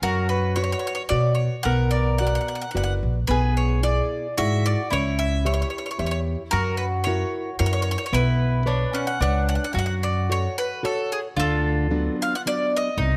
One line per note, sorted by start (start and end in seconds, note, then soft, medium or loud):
0.02 0.73 F#2 medium
0.02 0.55 F#3 medium
0.02 1.61 F#4 loud
0.02 0.28 A#4 medium
0.29 0.55 B4 medium
0.56 1.00 F#4 soft
0.56 1.00 B4 soft
0.56 0.62 C#5 medium
0.56 1.01 C#5 medium
0.64 0.71 C#5 medium
0.72 0.78 C#5 medium
0.79 0.86 C#5 medium
0.87 0.94 C#5 medium
0.95 1.02 C#5 medium
1.09 1.46 B2 medium
1.09 1.54 F#4 soft
1.09 1.54 B4 soft
1.09 1.54 C#5 soft
1.09 1.34 D5 loud
1.35 1.64 C#5 medium
1.63 2.36 B1 loud
1.63 2.18 B3 medium
1.63 2.98 A#4 loud
1.63 1.90 F#5 loud
1.91 2.17 D5 medium
2.18 2.64 B3 soft
2.18 2.64 F#4 medium
2.18 2.65 D5 medium
2.18 2.25 F#5 medium
2.27 2.34 F#5 medium
2.35 2.40 F#5 medium
2.41 2.47 F#5 soft
2.48 2.54 F#5 medium
2.55 2.60 F#5 medium
2.62 2.70 F#5 medium
2.71 3.18 F#4 soft
2.71 2.76 F#5 medium
2.75 2.99 F#1 medium
2.75 3.18 B4 soft
2.75 3.19 D5 soft
2.75 2.82 F#5 medium
2.83 2.93 F#5 medium
3.03 3.26 A#1 medium
3.27 3.99 B1 medium
3.27 3.81 B3 medium
3.27 4.34 G#4 medium
3.27 3.54 B4 medium
3.57 3.81 C#5 medium
3.83 4.26 E4 soft
3.83 4.26 G#4 soft
3.83 4.33 D5 medium
3.83 4.26 D5 medium
4.37 4.73 G#2 medium
4.37 4.81 E4 soft
4.37 4.87 F#4 medium
4.37 4.81 G#4 soft
4.37 4.81 D5 medium
4.37 4.66 E5 loud
4.66 4.90 D5 medium
4.91 5.62 C#2 medium
4.91 5.44 C#4 medium
4.91 6.52 E4 medium
4.91 5.20 C#5 loud
5.19 5.43 E5 medium
5.45 5.88 G4 soft
5.45 5.88 C#5 soft
5.45 5.52 C#5 medium
5.45 5.88 E5 medium
5.54 5.60 C#5 medium
5.62 5.68 C#5 medium
5.70 5.76 C#5 soft
5.78 5.84 C#5 medium
5.86 5.90 C#5 soft
5.91 5.97 C#5 medium
5.99 6.34 E2 medium
5.99 6.42 G4 soft
5.99 6.42 C#5 soft
5.99 6.05 C#5 medium
5.99 6.42 E5 medium
6.06 6.10 C#5 medium
6.11 6.19 C#5 medium
6.51 7.22 F#2 medium
6.51 7.05 F#3 medium
6.51 8.13 F#4 loud
6.51 6.77 A#4 loud
6.77 6.85 B4 medium
7.04 7.49 E4 medium
7.04 7.49 F#4 soft
7.04 7.50 A#4 medium
7.04 7.55 C#5 loud
7.59 7.95 F#2 loud
7.59 8.02 E4 soft
7.59 8.02 F#4 soft
7.59 8.03 A#4 medium
7.59 7.65 C#5 loud
7.66 7.72 C#5 medium
7.73 7.81 C#5 medium
7.82 7.90 C#5 medium
7.91 7.97 C#5 medium
7.98 8.05 C#5 medium
8.06 8.13 C#5 medium
8.13 8.83 B1 loud
8.13 8.65 B3 medium
8.13 8.63 E4 medium
8.13 9.45 B4 medium
8.66 8.93 D4 medium
8.66 9.10 B4 soft
8.66 9.10 C#5 soft
8.66 9.10 D5 medium
8.93 9.20 C#4 medium
8.93 9.06 F#5 medium
9.07 9.20 F#5 medium
9.20 9.56 C#2 medium
9.20 9.71 D4 medium
9.20 9.65 B4 soft
9.20 9.65 C#5 soft
9.20 9.66 D5 medium
9.20 9.47 F#5 medium
9.49 9.54 F#5 medium
9.55 9.63 F#5 medium
9.64 9.71 F#5 medium
9.73 10.46 F#2 medium
9.73 10.27 F#3 medium
9.73 11.36 F#4 medium
9.73 9.77 F#5 medium
9.79 9.85 F#5 medium
9.86 9.93 F#5 medium
10.03 10.31 D5 medium
10.29 10.73 F#4 soft
10.29 10.73 A4 soft
10.29 10.73 C#5 medium
10.29 10.56 C#5 medium
10.58 10.82 B4 medium
10.83 11.26 F#4 soft
10.83 11.27 A4 soft
10.83 11.10 A4 medium
10.83 11.27 C#5 medium
11.12 11.19 G#4 medium
11.37 12.07 D2 medium
11.37 11.89 D3 medium
11.37 12.97 F4 medium
11.37 12.15 A4 medium
11.91 12.34 F#3 medium
11.91 12.34 B3 medium
11.91 12.34 D4 medium
12.22 12.33 F5 loud
12.35 12.40 F#5 medium
12.46 12.88 F#3 medium
12.46 12.88 B3 medium
12.46 12.88 D4 soft
12.46 12.74 D5 loud
12.77 13.17 D#5 medium
12.97 13.17 C2 loud
12.97 13.17 C3 medium
12.97 13.17 D#4 loud